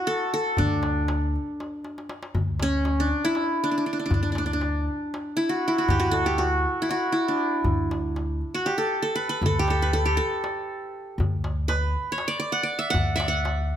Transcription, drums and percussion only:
0.34 darbuka ka
0.57 darbuka dum
0.71 darbuka ka
0.83 darbuka tek
1.08 darbuka tek
1.21 darbuka ka
1.36 darbuka ka
1.60 darbuka tek
1.85 darbuka tek
1.98 darbuka ka
2.09 darbuka tek
2.23 darbuka ka
2.35 darbuka dum
2.59 darbuka tek
2.85 darbuka tek
2.97 darbuka ka
3.11 darbuka ka
3.35 darbuka tek
4.11 darbuka dum
4.35 darbuka tek
4.61 darbuka tek
4.75 darbuka ka
4.88 darbuka ka
5.14 darbuka tek
5.88 darbuka dum
6.13 darbuka tek
6.39 darbuka tek
6.53 darbuka ka
6.65 darbuka ka
6.89 darbuka tek
7.64 darbuka dum
7.78 darbuka ka
7.91 darbuka tek
8.16 darbuka tek
8.41 darbuka ka
8.66 darbuka tek
8.79 darbuka ka
9.18 darbuka ka
9.43 darbuka dum
9.68 darbuka tek
9.93 darbuka tek
10.44 darbuka tek
11.20 darbuka dum
11.44 darbuka tek
11.69 darbuka tek
11.81 darbuka ka
11.94 darbuka ka
12.18 darbuka tek
12.94 darbuka dum
13.20 darbuka tek
13.45 darbuka tek
13.58 darbuka ka
13.71 darbuka ka

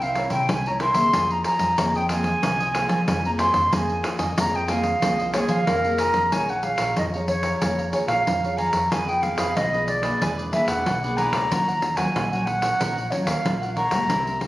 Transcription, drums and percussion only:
0.02 pandeiro
0.15 pandeiro
0.30 pandeiro
0.49 pandeiro
0.66 pandeiro
0.80 pandeiro
0.94 pandeiro
1.13 pandeiro
1.30 pandeiro
1.44 pandeiro
1.59 pandeiro
1.78 pandeiro
1.95 pandeiro
2.09 pandeiro
2.24 pandeiro
2.43 pandeiro
2.60 pandeiro
2.75 pandeiro
2.89 pandeiro
3.08 pandeiro
3.25 pandeiro
3.39 pandeiro
3.54 pandeiro
3.73 pandeiro
3.89 pandeiro
4.04 pandeiro
4.19 pandeiro
4.38 pandeiro
4.55 pandeiro
4.68 pandeiro
4.83 pandeiro
5.02 pandeiro
5.20 pandeiro
5.34 pandeiro
5.49 pandeiro
5.67 pandeiro
5.84 pandeiro
5.98 pandeiro
6.14 pandeiro
6.32 pandeiro
6.49 pandeiro
6.63 pandeiro
6.78 pandeiro
6.96 pandeiro
7.14 pandeiro
7.28 pandeiro
7.43 pandeiro
7.62 pandeiro
7.79 pandeiro
7.93 pandeiro
8.08 pandeiro
8.27 pandeiro
8.44 pandeiro
8.58 pandeiro
8.73 pandeiro
8.92 pandeiro
9.09 pandeiro
9.23 pandeiro
9.38 pandeiro
9.57 pandeiro
9.74 pandeiro
9.88 pandeiro
10.03 pandeiro
10.22 pandeiro
10.39 pandeiro
10.53 pandeiro
10.68 pandeiro
10.86 pandeiro
11.04 pandeiro
11.18 pandeiro
11.33 pandeiro
11.52 pandeiro
11.68 pandeiro
11.82 pandeiro
11.97 pandeiro
12.16 pandeiro
12.33 pandeiro
12.47 pandeiro
12.62 pandeiro
12.81 pandeiro
12.98 pandeiro
13.12 pandeiro
13.27 pandeiro
13.45 pandeiro
13.63 pandeiro
13.77 pandeiro
13.91 pandeiro
14.10 pandeiro
14.27 pandeiro
14.41 pandeiro

